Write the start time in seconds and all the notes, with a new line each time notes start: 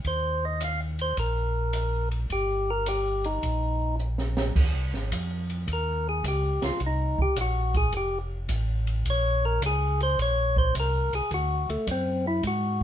0.04 D#2 C5, kick, ride
0.45 D#5
0.60 F5, hi-hat pedal, ride
0.99 C5, ride
1.17 A#1 A#4, kick, ride
1.73 hi-hat pedal, ride
2.11 ride
2.30 G1 G4, kick, ride
2.70 A#4
2.86 G4, hi-hat pedal, ride
3.24 D#4, ride
3.43 A#1, kick, ride
3.99 hi-hat pedal
4.18 snare
4.37 snare
4.55 D#2, kick, crash
4.74 C2
4.93 G#1, snare
5.12 F2, kick, hi-hat pedal, ride
5.50 ride
5.68 D#2, kick, ride
5.73 A#4
6.09 G#4
6.24 C#2 G4, kick, hi-hat pedal, ride
6.62 C#2 F4, snare, ride
6.80 C2, kick, ride
6.86 D#4
7.18 C2 G4, kick
7.36 A#1, kick, hi-hat pedal, ride
7.41 F#4
7.74 G#4, kick, ride
7.92 F1, kick, ride
7.97 G4
8.49 A1, kick, hi-hat pedal, ride
8.87 ride
9.05 A#1, kick, ride
9.10 C#5
9.45 A#4
9.61 C#2, kick, hi-hat pedal, ride
9.66 G#4
10.00 C5, ride
10.18 A#1, kick, ride
10.22 C#5
10.56 C5, kick
10.75 C2, kick, hi-hat pedal, ride
10.80 A#4
11.13 C2 G#4, ride
11.31 D2 F#4, kick, ride
11.69 D2 A3, ride
11.87 F#2, kick, hi-hat pedal, ride
11.91 C4
12.27 E4
12.43 G#2, kick, ride
12.47 F#4